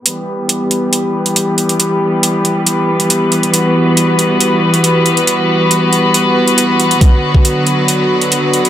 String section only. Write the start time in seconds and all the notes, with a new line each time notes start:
0.06 E3 G3 B3 G4 B4
3.54 F#4
7.01 D3 F#3